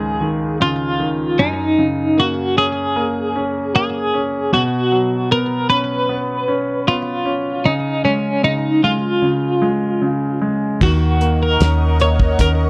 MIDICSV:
0, 0, Header, 1, 6, 480
1, 0, Start_track
1, 0, Key_signature, 6, "major"
1, 0, Tempo, 783290
1, 851, Time_signature, 4, 2, 24, 8
1, 5165, Tempo, 792602
1, 7751, End_track
2, 0, Start_track
2, 0, Title_t, "Analog synth pad"
2, 0, Program_c, 0, 89
2, 6611, Note_on_c, 0, 85, 75
2, 6615, Note_on_c, 0, 78, 67
2, 6616, Note_on_c, 0, 75, 62
2, 6617, Note_on_c, 0, 70, 68
2, 7751, Note_off_c, 0, 70, 0
2, 7751, Note_off_c, 0, 75, 0
2, 7751, Note_off_c, 0, 78, 0
2, 7751, Note_off_c, 0, 85, 0
2, 7751, End_track
3, 0, Start_track
3, 0, Title_t, "Clean electric guitar"
3, 0, Program_c, 1, 27
3, 0, Note_on_c, 1, 68, 71
3, 349, Note_off_c, 1, 68, 0
3, 379, Note_on_c, 1, 65, 70
3, 854, Note_on_c, 1, 63, 64
3, 871, Note_off_c, 1, 65, 0
3, 1346, Note_on_c, 1, 66, 71
3, 1350, Note_off_c, 1, 63, 0
3, 1578, Note_off_c, 1, 66, 0
3, 1581, Note_on_c, 1, 68, 79
3, 2295, Note_off_c, 1, 68, 0
3, 2302, Note_on_c, 1, 68, 78
3, 2777, Note_off_c, 1, 68, 0
3, 2780, Note_on_c, 1, 66, 72
3, 3258, Note_off_c, 1, 66, 0
3, 3260, Note_on_c, 1, 70, 82
3, 3488, Note_off_c, 1, 70, 0
3, 3491, Note_on_c, 1, 71, 88
3, 4214, Note_off_c, 1, 71, 0
3, 4217, Note_on_c, 1, 65, 72
3, 4691, Note_on_c, 1, 63, 65
3, 4705, Note_off_c, 1, 65, 0
3, 4912, Note_off_c, 1, 63, 0
3, 4932, Note_on_c, 1, 61, 64
3, 5171, Note_off_c, 1, 61, 0
3, 5174, Note_on_c, 1, 63, 74
3, 5393, Note_off_c, 1, 63, 0
3, 5414, Note_on_c, 1, 65, 59
3, 6350, Note_off_c, 1, 65, 0
3, 6620, Note_on_c, 1, 66, 69
3, 6978, Note_off_c, 1, 66, 0
3, 6981, Note_on_c, 1, 70, 71
3, 7310, Note_off_c, 1, 70, 0
3, 7337, Note_on_c, 1, 73, 79
3, 7573, Note_off_c, 1, 73, 0
3, 7575, Note_on_c, 1, 70, 86
3, 7639, Note_off_c, 1, 70, 0
3, 7751, End_track
4, 0, Start_track
4, 0, Title_t, "Grand piano"
4, 0, Program_c, 2, 0
4, 0, Control_c, 2, 64, 127
4, 0, Note_on_c, 2, 37, 51
4, 0, Note_on_c, 2, 44, 37
4, 0, Note_on_c, 2, 49, 35
4, 0, Note_on_c, 2, 51, 43
4, 0, Note_on_c, 2, 56, 38
4, 101, Note_off_c, 2, 44, 0
4, 118, Note_off_c, 2, 51, 0
4, 127, Note_on_c, 2, 51, 44
4, 345, Note_off_c, 2, 49, 0
4, 370, Note_on_c, 2, 49, 42
4, 602, Note_off_c, 2, 51, 0
4, 611, Note_on_c, 2, 51, 39
4, 825, Note_off_c, 2, 37, 0
4, 827, Note_off_c, 2, 56, 0
4, 838, Note_off_c, 2, 49, 0
4, 845, Note_off_c, 2, 51, 0
4, 852, Note_on_c, 2, 42, 51
4, 858, Control_c, 2, 64, 0
4, 970, Control_c, 2, 64, 127
4, 1093, Note_on_c, 2, 49, 41
4, 1332, Note_on_c, 2, 58, 40
4, 1573, Note_on_c, 2, 61, 44
4, 1805, Note_off_c, 2, 58, 0
4, 1815, Note_on_c, 2, 58, 47
4, 2031, Note_off_c, 2, 49, 0
4, 2048, Note_off_c, 2, 61, 0
4, 2057, Note_on_c, 2, 61, 46
4, 2285, Note_off_c, 2, 58, 0
4, 2295, Note_on_c, 2, 58, 45
4, 2528, Note_off_c, 2, 61, 0
4, 2537, Note_on_c, 2, 61, 47
4, 2751, Note_off_c, 2, 42, 0
4, 2761, Note_off_c, 2, 58, 0
4, 2769, Note_off_c, 2, 61, 0
4, 2773, Note_on_c, 2, 47, 55
4, 2783, Control_c, 2, 64, 0
4, 2895, Control_c, 2, 64, 127
4, 3015, Note_on_c, 2, 54, 41
4, 3256, Note_on_c, 2, 59, 44
4, 3494, Note_on_c, 2, 61, 49
4, 3723, Note_off_c, 2, 59, 0
4, 3733, Note_on_c, 2, 59, 45
4, 3945, Note_off_c, 2, 54, 0
4, 3962, Note_off_c, 2, 61, 0
4, 3972, Note_on_c, 2, 61, 49
4, 4202, Note_off_c, 2, 59, 0
4, 4212, Note_on_c, 2, 59, 46
4, 4436, Note_off_c, 2, 61, 0
4, 4446, Note_on_c, 2, 61, 44
4, 4661, Note_off_c, 2, 47, 0
4, 4674, Note_off_c, 2, 59, 0
4, 4678, Note_off_c, 2, 61, 0
4, 4689, Note_on_c, 2, 49, 55
4, 4694, Control_c, 2, 64, 0
4, 4799, Control_c, 2, 64, 127
4, 4928, Note_on_c, 2, 56, 44
4, 5159, Note_off_c, 2, 49, 0
4, 5168, Note_on_c, 2, 49, 40
4, 5400, Note_off_c, 2, 56, 0
4, 5409, Note_on_c, 2, 56, 41
4, 5636, Note_off_c, 2, 49, 0
4, 5645, Note_on_c, 2, 49, 42
4, 5876, Note_off_c, 2, 56, 0
4, 5885, Note_on_c, 2, 56, 44
4, 6118, Note_off_c, 2, 49, 0
4, 6127, Note_on_c, 2, 49, 44
4, 6359, Note_off_c, 2, 56, 0
4, 6368, Note_on_c, 2, 56, 41
4, 6596, Note_off_c, 2, 49, 0
4, 6603, Note_off_c, 2, 56, 0
4, 6610, Note_on_c, 2, 51, 58
4, 6619, Control_c, 2, 64, 0
4, 6728, Control_c, 2, 64, 127
4, 6850, Note_on_c, 2, 58, 44
4, 7088, Note_on_c, 2, 61, 37
4, 7315, Note_off_c, 2, 58, 0
4, 7324, Note_on_c, 2, 58, 47
4, 7559, Note_off_c, 2, 61, 0
4, 7568, Note_on_c, 2, 61, 44
4, 7751, Note_off_c, 2, 51, 0
4, 7751, Note_off_c, 2, 58, 0
4, 7751, Note_off_c, 2, 61, 0
4, 7751, End_track
5, 0, Start_track
5, 0, Title_t, "Fingered electric bass"
5, 0, Program_c, 3, 33
5, 6609, Note_on_c, 3, 39, 81
5, 7065, Note_off_c, 3, 39, 0
5, 7088, Note_on_c, 3, 39, 91
5, 7542, Note_off_c, 3, 39, 0
5, 7562, Note_on_c, 3, 39, 79
5, 7751, Note_off_c, 3, 39, 0
5, 7751, End_track
6, 0, Start_track
6, 0, Title_t, "Drums"
6, 6609, Note_on_c, 9, 36, 81
6, 6609, Note_on_c, 9, 49, 71
6, 6669, Note_off_c, 9, 36, 0
6, 6669, Note_off_c, 9, 49, 0
6, 6850, Note_on_c, 9, 42, 58
6, 6910, Note_off_c, 9, 42, 0
6, 7088, Note_on_c, 9, 42, 71
6, 7096, Note_on_c, 9, 38, 85
6, 7149, Note_off_c, 9, 42, 0
6, 7156, Note_off_c, 9, 38, 0
6, 7326, Note_on_c, 9, 42, 56
6, 7386, Note_off_c, 9, 42, 0
6, 7446, Note_on_c, 9, 36, 83
6, 7507, Note_off_c, 9, 36, 0
6, 7563, Note_on_c, 9, 42, 80
6, 7564, Note_on_c, 9, 36, 67
6, 7624, Note_off_c, 9, 36, 0
6, 7624, Note_off_c, 9, 42, 0
6, 7751, End_track
0, 0, End_of_file